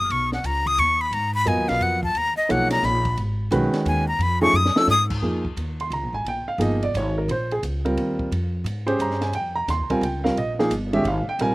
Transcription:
0.00 D#6
0.10 B1 C#6, ride
0.32 F#5, snare
0.43 C#2 A#5, hi-hat pedal, ride
0.66 D#6, kick
0.78 D#2 C#6, ride
1.01 B5
1.11 G#2 A#5, ride
1.34 B5
1.46 F#2 F#3 B3 F4 A#4 D#5 G#5, hi-hat pedal, ride
1.57 D#2
1.68 B1 F5, snare, ride
1.80 F2 F#5, ride
2.03 A5, kick
2.14 D#2 A#5, ride
2.37 D#5, muted upright bass stroke
2.49 B1 F3 A#3 D#4 G#4 C#5 F#5, hi-hat pedal, ride
2.70 A#5, snare, ride
2.83 A#1 B5, snare, hi-hat pedal
3.05 kick, ride
3.17 G#1, ride
3.51 B1 D#3 G#3 C#4 F#4 B4, hi-hat pedal, ride
3.73 muted upright bass stroke, snare, ride
3.85 D#2 G#5, ride
4.08 A#5
4.19 F2 B5, ride
4.41 F3 A3 C#4 D#4 G#4 C#6
4.53 F#2 D#6, hi-hat pedal
4.66 snare
4.76 F3 A3 C#4 D#4 A4 E6, muted upright bass stroke, snare
4.87 G#2 D#6, snare, hi-hat pedal
5.10 kick, crash
5.22 F2 F3 A#3 D#4 G#4
5.45 kick
5.57 D#2, hi-hat pedal, ride
5.80 C6, ride
5.90 C#2 A#5, ride
6.03 A#1
6.13 G#1 G#5
6.25 A#1 G5, ride
6.47 F5, muted upright bass stroke
6.58 G1 F3 A#3 D#4 G#4 D#5, hi-hat pedal, ride
6.83 D5, ride
6.94 G#1 C#5, hi-hat pedal, ride
7.18 A#4
7.28 A#1 C5, ride
7.51 G#4, ride
7.63 C#2, hi-hat pedal, ride
7.85 G3 C4 F4 A#4, ride
7.97 D#2, ride
8.19 kick
8.31 F2, ride
8.64 G#2, hi-hat pedal, ride
8.87 C#4 G4 G#4 C5, ride
8.99 G2 A#5, hi-hat pedal, ride
9.10 snare
9.21 G#5, snare, ride
9.33 F2 G5, ride
9.55 A#5
9.68 D#2 C6, snare, hi-hat pedal, ride
9.79 C#2
9.90 A#1 G3 C4 F4 A#4 G#5, kick, ride
10.01 C#2 G5, ride
10.24 G3 C4 F4 A#4 F5, snare
10.36 A#1 D#5, ride
10.59 F3 A#3 D#4 G#4, snare
10.70 G1, hi-hat pedal, ride
10.93 D#3 G#3 C#4 G4 E5, ride
11.04 G#1 F5, ride
11.26 G5, muted upright bass stroke
11.39 A#1 G3 C4 F4 A#4 G#5, ride

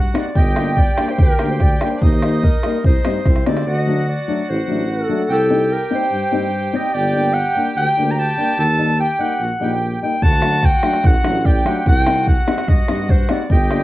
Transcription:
Already playing: G2 F#4
0.14 G3 C4 D#4 D5, snare
0.35 G1 G4 D#5, kick, snare
0.56 G3 A#3 D4, snare
0.66 snare
0.77 D5, kick
0.98 G3 A#3 D4, snare
1.08 C5, snare
1.18 D2 A#4, kick
1.39 D2 G3 A#3 D4, snare
1.51 C5
1.60 D5, kick, snare
1.81 G3 A#3 D4 D5, snare
1.91 D4 C5
2.02 D#2 D#4, kick
2.12 snare
2.22 G3 A#3 D#4, snare
2.43 A#4, kick
2.63 G3 A#3 D#4, snare
2.84 C2 D#4 C5, kick
3.05 G2 G3 C4 D#4, snare
3.25 C2 C4, kick, snare
3.36 snare
3.46 D2 G3 C4 D#4 D5, snare
3.57 snare
3.67 D2 F#4 D#5
3.87 F#3 A3 D4
4.09 D5
4.28 F#3 A3 D4
4.49 A1 C5
4.68 A1 F#3 A3 D4
4.91 A4
5.09 F#3 A3 D4
5.29 C2 G4 A4
5.49 G3 C4 D#4
5.73 A#4
5.90 G3 C4 D#4
5.95 C5
6.12 G2
6.31 G2 G3 C4 D#4
6.73 G3 C4 D#4 D#5
6.93 G1 G4 D5
7.14 G3 A#3 D4
7.33 F#5
7.55 G3 A#3 D4
7.76 D2 G5
7.97 D2 G3 A#3 D4
8.11 A#5
8.19 A5
8.37 G3 A#3 D4
8.58 D#2 A4 A5
8.78 G3 A#3 D#4
8.99 G4 G5
9.19 G3 A#3 D#4 F#5
9.40 A#1 F#4
9.60 A#1 G3 A#3 D#4 G4
10.02 G3 A#3 D#4 G5
10.22 D2 F#4 A5, kick
10.32 snare
10.42 F#3 A3 D4, snare
10.62 G5, kick, snare
10.83 F#3 A3 D4, snare
10.93 snare
11.04 A1 F#5, kick, snare
11.15 snare
11.24 A1 F#3 A3 D4, snare
11.45 G4 D5, kick
11.65 F#3 A3 D4 F#5, snare
11.86 C2 F#4 G5, kick
12.07 G3 C4 D#4, snare
12.27 F#5, kick
12.47 G3 C4 D#4, snare
12.58 snare
12.68 G2 D#5, kick
12.88 G2 G3 C4 D#4, snare
13.09 C5, kick
13.29 G3 C4 D#4 D5, snare
13.50 G1 G4 D#5, kick
13.69 G3 A#3 D4, snare

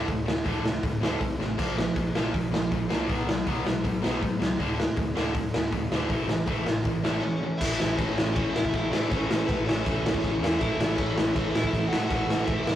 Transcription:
0.07 D1 D2 A2, kick, open hi-hat
0.26 D1 D2 A2, snare
0.44 D1 D2 A2 D3, kick, open hi-hat
0.63 D1 D2 A2, snare
0.83 D1 D2 A2, kick, open hi-hat
1.00 D1 D2 A2 D3, snare
1.20 B1 D2 A2, kick, open hi-hat
1.39 A1 D2 A2, snare
1.58 A#1 A#2 F3 A#3, kick, open hi-hat, crash
1.77 A#2 F3, snare
1.96 A#1 A#2 F3, kick, open hi-hat
2.14 A#1 A#2 F3 A#3, snare
2.34 A#1 A#2 F3, kick, open hi-hat
2.52 A#1 A#2 F3, snare
2.72 A#1 A#2 F3, kick, open hi-hat
2.89 C2 A#2 F3 A#3, snare
3.08 B1 B2 F#3 B3, kick, open hi-hat
3.27 B1 B2 F#3, snare
3.46 B1 B2 F#3 B3, kick, open hi-hat
3.65 B1 B2 F#3, snare
3.84 B1 B2 F#3, kick, open hi-hat
4.02 B1 B2 F#3 B3, snare
4.21 A2 B2 F#3, kick, open hi-hat
4.39 C#2 B2 F#3, snare
4.59 D1 D2 A2 D3, kick, open hi-hat
4.79 D2 A2, snare
4.96 D1 D2 A2, kick, open hi-hat
5.15 D1 D2 A2 D3, snare
5.34 D1 D2 A2, kick, open hi-hat
5.54 D1 D2 A2, snare
5.72 D1 D2 A2, kick, open hi-hat
5.91 D1 D2 A2 D3, snare
6.10 A1 A2 E3 A3, kick, open hi-hat
6.27 A1 A2 E3, snare
6.47 A1 A2 E3 A3, kick, open hi-hat
6.66 A1 A2 E3, snare
6.85 A1 A2 E3, kick, open hi-hat
7.03 A1 A2 E3 A3, snare
7.22 A2 E3 C#4 C#5
7.43 A2 E3
7.58 A1 A2 E4 E5, kick, crash
7.63 E3 A3
7.79 A1, snare
7.97 A1 C#4 C#5, kick, crash
8.18 A1, snare
8.35 A1 A2 E3 A3 C#4 C#5, kick, crash
8.53 A1 E4 E5, snare
8.65 kick
8.73 A1, kick, crash
8.92 A2 E3 A3 D4 D5, snare
9.10 A1 A2 E3 A3 C#4 C#5, kick, crash
9.29 A1, snare
9.46 A1 B3 B4, kick, crash
9.66 A1 C#4 C#5, snare
9.84 A1 A2 E3 A3, kick, crash
10.04 A1, snare
10.14 kick
10.20 C#4 C#5
10.24 A1, kick, crash
10.41 E2 A2 E3 A3, snare
10.58 A1 A2 E3 E4 E5, kick, crash
10.63 A3
10.79 A1, snare
10.96 A1 C#4 C#5, kick, crash
11.14 A1, snare
11.33 A1 A2 E3 A3 C#4 C#5, kick, crash
11.51 A1 E4 E5
11.55 snare
11.64 kick
11.73 A1, kick, crash
11.89 A2 A3 F#4 F#5
11.93 A2 E3, snare
12.05 A2 F#5
12.10 A1 E3 A3 F#4, kick, crash
12.27 A1, snare
12.45 A1 E5, kick, crash
12.49 E4
12.63 A1 E5
12.67 E4, snare

